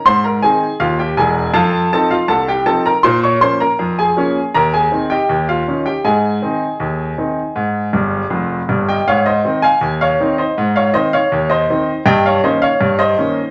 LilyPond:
<<
  \new Staff \with { instrumentName = "Grand piano" } { \time 2/4 \key aes \major \tempo 4 = 80 <c'' c'''>16 <bes' bes''>16 <aes' aes''>8 <f' f''>16 <g' g''>16 <aes' aes''>8 | <a' f'' a''>8 <a' a''>16 <f' f''>16 <a' a''>16 <g' g''>16 <a' a''>16 <bes' bes''>16 | <c'' c'''>16 <des'' des'''>16 <c'' c'''>16 <bes' bes''>8 <aes' aes''>8. | <bes' bes''>16 <aes' aes''>8 <g' ees'' g''>8 <f' f''>8 <g' g''>16 |
<aes' ees'' aes''>2~ | <aes' ees'' aes''>4. r16 <ees'' g''>16 | <des'' f''>16 <c'' ees''>8 <f'' aes''>8 <des'' f''>8 <c'' ees''>16~ | <c'' ees''>16 <des'' f''>16 <c'' ees''>16 <des'' f''>8 <c'' ees''>8. |
<ees'' g''>16 <des'' f''>16 <c'' ees''>16 <des'' f''>8 <c'' ees''>8. | }
  \new Staff \with { instrumentName = "Grand piano" } { \clef bass \time 2/4 \key aes \major aes,8 <ees c' ees'>8 ees,8 <fes,, fes,>8 | f,8 <f c' ees'>8 c,8 <f c' ees'>8 | bes,8 <f bes des'>8 f,8 <f bes des'>8 | ees,8 <ees c' ees'>8 ees,8 <ees des' ees'>8 |
aes,8 <ees c' ees'>8 ees,8 <ees c' ees'>8 | aes,8 <g,, g,>8 <f,, f,>8 <g,, g,>8 | aes,8 <ees c' ees'>8 ees,8 <ees c' ees'>8 | aes,8 <ees c' ees'>8 ees,8 <ees c' ees'>8 |
g,8 <ees bes des'>8 g,8 <ees bes des'>8 | }
>>